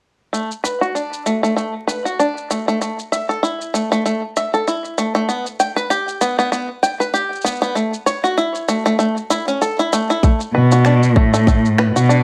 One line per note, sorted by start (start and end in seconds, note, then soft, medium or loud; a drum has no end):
0.33 0.50 A3 medium
0.33 shaker soft
0.51 shaker soft
0.64 0.80 B4 medium
0.64 shaker medium
0.81 0.94 F#4 medium
0.81 shaker soft
0.95 1.25 D4 medium
0.95 shaker soft
1.13 shaker soft
1.26 1.42 A3 medium
1.26 shaker medium
1.43 1.55 A3 medium
1.43 shaker soft
1.56 1.73 A3 medium
1.56 shaker soft
1.87 2.03 B4 medium
1.87 shaker medium
2.05 2.18 F#4 medium
2.05 shaker soft
2.19 2.49 D4 medium
2.19 shaker soft
2.37 shaker soft
2.50 2.66 A3 medium
2.50 shaker medium
2.68 2.80 A3 medium
2.68 shaker soft
2.81 2.98 A3 medium
2.81 shaker soft
2.99 shaker soft
3.12 3.28 E5 medium
3.12 shaker medium
3.29 3.41 A4 medium
3.29 shaker soft
3.43 3.72 E4 medium
3.43 shaker soft
3.61 shaker soft
3.74 3.89 A3 medium
3.74 shaker medium
3.92 4.04 A3 medium
3.92 shaker soft
4.06 4.22 A3 medium
4.06 shaker soft
4.36 4.52 E5 medium
4.36 shaker medium
4.54 4.66 A4 medium
4.54 shaker soft
4.67 4.97 E4 medium
4.67 shaker soft
4.85 shaker soft
4.98 5.13 A3 medium
4.98 shaker medium
5.15 5.27 A3 medium
5.15 shaker soft
5.29 5.45 B3 medium
5.29 shaker soft
5.46 shaker soft
5.60 5.75 G5 medium
5.60 shaker medium
5.76 5.89 B4 medium
5.76 shaker soft
5.90 6.20 G4 medium
5.90 shaker soft
6.08 shaker soft
6.21 6.37 B3 medium
6.21 shaker medium
6.39 6.51 B3 medium
6.39 shaker soft
6.52 6.68 B3 medium
6.52 shaker soft
6.83 6.99 G5 medium
6.83 shaker medium
7.00 7.13 B4 medium
7.00 shaker soft
7.14 7.43 G4 medium
7.14 shaker soft
7.32 shaker soft
7.35 shaker soft
7.41 7.60 B3 medium
7.41 shaker soft
7.46 shaker medium
7.56 shaker soft
7.62 7.74 B3 medium
7.62 shaker soft
7.75 7.92 A3 medium
7.75 shaker soft
7.94 shaker soft
8.06 8.22 C#5 medium
8.06 shaker medium
8.24 8.36 F#4 medium
8.24 shaker soft
8.37 8.67 E4 medium
8.37 shaker soft
8.55 shaker soft
8.68 8.84 A3 medium
8.68 shaker medium
8.86 8.98 A3 medium
8.86 shaker soft
8.99 9.16 A3 medium
8.99 shaker soft
9.17 shaker soft
9.30 9.46 E4 medium
9.30 shaker medium
9.48 9.60 C#4 medium
9.48 shaker soft
9.62 9.77 A4 medium
9.62 shaker soft
9.79 9.91 E4 medium
9.79 shaker soft
9.93 10.08 A3 medium
9.93 shaker medium
10.10 10.22 E4 medium
10.10 shaker soft
10.23 10.40 A3 medium
10.23 kick loud
10.23 shaker soft
10.40 shaker soft
10.54 11.18 B2 medium
10.54 10.70 B4 medium
10.72 10.84 F#4 medium
10.72 shaker medium
10.85 11.15 D4 medium
10.85 finger snap medium
10.85 shaker soft
11.03 shaker soft
11.16 11.88 A2 medium
11.16 11.32 A3 medium
11.16 kick loud
11.34 11.46 A3 medium
11.34 shaker medium
11.47 11.64 A3 medium
11.47 kick loud
11.47 shaker medium
11.65 shaker soft
11.78 11.94 B4 medium
11.78 finger snap medium
11.95 12.23 B2 medium
11.95 12.08 F#4 medium
11.95 shaker medium
12.09 12.23 D4 medium
12.09 shaker soft